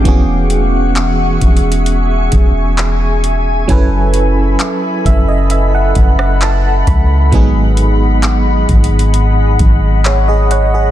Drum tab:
HH |x-----x-----x-----x-x-x-x-----x-----x-----x-----|x-----x-----x-----x-----x-----x-----x-----x-----|x-----x-----x-----x-x-x-x-----x-----x-----x-----|
CP |------------x-----------------------x-----------|------------x-----------------------x-----------|------------x-----------------------x-----------|
SD |------------------------------------------------|---------------------------------r--------------|------------------------------------------------|
BD |o-----------------o-----------o-----------------|o-----------------o-----------o-----------o-----|o-----------------o-----------o-----------------|